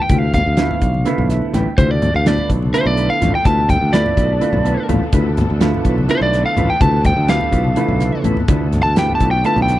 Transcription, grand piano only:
0.58 0.87 D3 medium
0.58 0.87 F3 medium
0.58 0.88 A3 medium
0.58 0.88 B3 medium
0.58 0.88 E4 medium
1.05 1.64 D3 medium
1.05 1.64 F3 medium
1.05 1.65 A3 medium
1.05 1.65 B3 medium
1.05 1.65 E4 medium
1.30 1.52 E5 medium
1.54 1.76 G5 medium
2.25 2.55 D3 medium
2.25 2.55 F3 medium
2.25 2.55 A3 medium
2.25 2.55 B3 medium
2.25 2.56 D4 medium
2.73 3.32 D3 medium
2.73 3.32 F3 medium
2.73 3.32 A3 medium
2.73 3.33 B3 medium
2.73 3.33 E4 medium
3.93 4.22 D3 medium
3.93 4.23 F3 medium
3.93 4.23 A3 medium
3.93 4.23 B3 medium
3.93 4.23 E4 medium
4.40 5.00 D3 medium
4.40 5.00 F3 medium
4.40 5.00 A3 medium
4.40 5.00 B3 medium
4.40 5.00 F4 medium
4.65 4.88 A5 medium
4.89 5.11 F5 medium
5.60 5.90 D3 medium
5.60 5.90 F3 medium
5.60 5.90 A3 medium
5.60 5.91 B3 medium
5.60 5.91 F4 loud
6.08 6.67 D3 medium
6.08 6.68 F3 medium
6.08 6.68 A3 medium
6.08 6.68 B3 medium
6.08 6.68 E4 medium
7.28 7.58 D3 medium
7.28 7.58 F3 medium
7.28 7.58 A3 medium
7.28 7.59 B3 medium
7.28 7.59 G4 medium
7.76 8.35 D3 medium
7.76 8.36 E3 medium
7.76 8.35 F3 medium
7.76 8.36 A3 medium
7.76 8.36 B3 medium
8.96 9.26 D3 medium
8.96 9.26 F3 medium
8.96 9.26 A3 medium
8.96 9.26 B3 medium
8.96 9.27 G4 medium
9.44 9.79 D3 medium
9.44 9.79 F3 medium
9.44 9.79 A3 medium
9.44 9.79 B3 medium
9.44 9.79 F4 medium

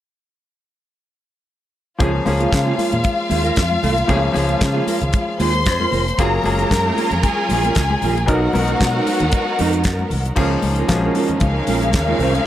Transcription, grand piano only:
1.98 2.21 F3 medium
1.98 2.22 A#3 medium
1.98 2.22 C#4 medium
1.98 2.22 G#4 medium
2.25 3.13 F3 medium
2.25 3.14 A#3 medium
2.25 3.14 C#4 medium
2.25 3.15 G#4 medium
4.07 4.30 F3 medium
4.07 4.31 A#3 medium
4.07 4.31 C#4 medium
4.07 4.31 G#4 medium
4.32 5.21 F3 medium
4.32 5.22 A#3 medium
4.32 5.22 C#4 medium
4.32 5.22 G#4 medium
6.18 6.41 F#3 medium
6.18 6.41 A#3 medium
6.18 6.41 F4 medium
6.18 6.41 G#4 loud
6.44 7.32 F#3 medium
6.44 7.32 A#3 medium
6.44 7.32 F4 medium
6.44 7.33 G#4 medium
8.26 8.49 F#3 medium
8.26 8.49 B3 medium
8.26 8.50 D#4 medium
8.26 8.50 A#4 medium
8.53 9.41 F#3 medium
8.53 9.41 B3 medium
8.53 8.60 C#4 medium
8.53 9.41 A#4 medium
8.60 9.44 D#4 medium
10.36 10.80 F3 medium
10.36 10.81 A#3 medium
10.36 10.81 C#4 medium
10.36 10.81 G#4 loud
10.88 11.76 F3 medium
10.88 11.76 A#3 medium
10.88 11.77 C#4 medium
10.88 10.96 F#4 medium
10.95 11.80 G#4 medium

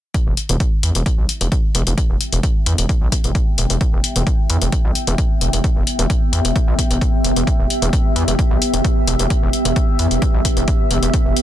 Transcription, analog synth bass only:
0.26 0.33 E1 medium
0.49 0.56 E1 medium
0.83 0.91 E2 medium
0.95 1.02 E1 medium
1.18 1.25 B1 medium
1.41 1.48 E1 medium
1.75 1.82 E1 loud
1.87 1.94 E1 medium
2.09 2.17 E1 medium
2.33 2.40 E1 medium
2.66 2.74 E2 loud
2.78 2.85 E1 medium
3.01 3.08 B1 medium
3.24 3.31 E1 medium
3.58 3.66 E1 loud
3.70 3.77 E1 medium
3.93 4.00 E1 medium
4.16 4.23 E1 medium
4.50 4.57 E2 medium
4.62 4.69 E1 medium
4.85 4.92 B1 medium
5.07 5.14 E1 medium
5.41 5.49 E1 medium
5.53 5.60 E1 medium
5.76 5.83 E1 medium
5.99 6.06 E1 medium
6.33 6.40 E2 medium
6.45 6.52 E1 medium
6.68 6.75 B1 medium
6.90 6.98 E1 medium
7.24 7.32 E1 loud
7.36 7.43 E1 medium
7.59 7.66 E1 medium
7.82 7.89 E1 medium
8.16 8.24 E2 loud
8.28 8.35 E1 medium
8.51 8.58 B1 medium
8.74 8.81 E1 medium
9.08 9.15 E1 loud
9.19 9.27 E1 medium
9.42 9.49 E1 medium
9.65 9.72 E1 medium
9.99 10.07 E2 medium
10.11 10.18 E1 medium
10.34 10.41 B1 medium
10.57 10.64 E1 medium
10.91 10.98 E1 medium
11.02 11.10 E1 medium
11.25 11.33 E1 medium

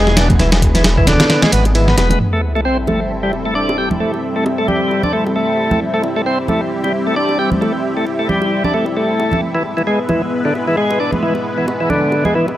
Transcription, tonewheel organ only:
0.00 0.16 G#3 medium
0.17 0.28 D4 medium
0.39 0.51 E3 medium
0.75 0.83 E3 medium
0.98 1.06 E3 medium
1.07 1.42 D3 medium
1.43 1.52 G#3 medium
1.53 1.65 B3 medium
1.75 1.87 E3 medium
1.88 1.96 B3 medium
1.98 2.09 B3 medium
2.10 2.19 B3 medium
2.33 2.41 A3 medium
2.55 2.61 A3 medium
2.65 2.77 C4 loud
2.88 3.00 A3 loud
3.23 3.32 G3 medium
3.46 3.54 A3 medium
3.55 3.77 D4 medium
3.78 3.89 G4 medium
4.00 4.12 A3 medium
4.36 4.44 A3 medium
4.58 4.67 A3 medium
4.68 5.02 G3 medium
5.04 5.12 D4 medium
5.13 5.24 A3 medium
5.36 5.80 A3 medium
5.94 6.02 A3 medium
6.16 6.21 A3 medium
6.26 6.38 C4 loud
6.49 6.61 A3 medium
6.84 6.92 G3 medium
7.07 7.15 A3 medium
7.16 7.38 D4 medium
7.39 7.50 G4 medium
7.61 7.72 A3 medium
7.97 8.05 A3 medium
8.19 8.28 A3 medium
8.29 8.63 G3 medium
8.65 8.73 D4 medium
8.74 8.85 A3 loud
8.97 9.41 A3 medium
9.55 9.63 E3 medium
9.77 9.82 E3 loud
9.87 9.99 G#3 loud
10.09 10.22 E3 medium
10.45 10.53 D3 medium
10.68 10.76 E3 medium
10.77 10.99 G#3 medium
11.00 11.11 D4 medium
11.23 11.34 E3 medium
11.58 11.66 E3 medium
11.80 11.89 E3 medium
11.90 12.24 D3 medium
12.25 12.34 G#3 medium
12.35 12.46 E3 loud

